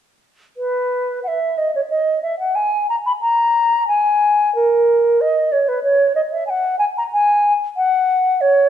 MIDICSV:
0, 0, Header, 1, 2, 480
1, 0, Start_track
1, 0, Tempo, 664452
1, 410, Time_signature, 3, 2, 24, 8
1, 3286, Tempo, 643777
1, 6374, End_track
2, 0, Start_track
2, 0, Title_t, "Flute"
2, 0, Program_c, 0, 73
2, 408, Note_on_c, 0, 71, 53
2, 863, Note_off_c, 0, 71, 0
2, 889, Note_on_c, 0, 78, 48
2, 919, Note_on_c, 0, 76, 52
2, 926, Note_off_c, 0, 78, 0
2, 1136, Note_on_c, 0, 75, 46
2, 1147, Note_off_c, 0, 76, 0
2, 1252, Note_off_c, 0, 75, 0
2, 1263, Note_on_c, 0, 73, 47
2, 1306, Note_off_c, 0, 73, 0
2, 1368, Note_on_c, 0, 75, 58
2, 1601, Note_off_c, 0, 75, 0
2, 1605, Note_on_c, 0, 76, 45
2, 1721, Note_off_c, 0, 76, 0
2, 1726, Note_on_c, 0, 78, 49
2, 1840, Note_on_c, 0, 80, 57
2, 1851, Note_off_c, 0, 78, 0
2, 2084, Note_off_c, 0, 80, 0
2, 2088, Note_on_c, 0, 82, 53
2, 2131, Note_off_c, 0, 82, 0
2, 2208, Note_on_c, 0, 83, 54
2, 2251, Note_off_c, 0, 83, 0
2, 2319, Note_on_c, 0, 82, 58
2, 2793, Note_off_c, 0, 82, 0
2, 2796, Note_on_c, 0, 80, 57
2, 3270, Note_off_c, 0, 80, 0
2, 3284, Note_on_c, 0, 70, 54
2, 3775, Note_on_c, 0, 75, 59
2, 3786, Note_off_c, 0, 70, 0
2, 4007, Note_on_c, 0, 73, 50
2, 4018, Note_off_c, 0, 75, 0
2, 4129, Note_on_c, 0, 71, 49
2, 4140, Note_off_c, 0, 73, 0
2, 4235, Note_off_c, 0, 71, 0
2, 4240, Note_on_c, 0, 73, 60
2, 4474, Note_off_c, 0, 73, 0
2, 4479, Note_on_c, 0, 75, 51
2, 4524, Note_off_c, 0, 75, 0
2, 4606, Note_on_c, 0, 76, 47
2, 4708, Note_off_c, 0, 76, 0
2, 4713, Note_on_c, 0, 80, 54
2, 4737, Note_on_c, 0, 78, 58
2, 4745, Note_off_c, 0, 80, 0
2, 4947, Note_off_c, 0, 78, 0
2, 4952, Note_on_c, 0, 80, 56
2, 4997, Note_off_c, 0, 80, 0
2, 5093, Note_on_c, 0, 82, 60
2, 5138, Note_off_c, 0, 82, 0
2, 5206, Note_on_c, 0, 80, 61
2, 5506, Note_off_c, 0, 80, 0
2, 5681, Note_on_c, 0, 78, 72
2, 6161, Note_on_c, 0, 73, 65
2, 6173, Note_off_c, 0, 78, 0
2, 6374, Note_off_c, 0, 73, 0
2, 6374, End_track
0, 0, End_of_file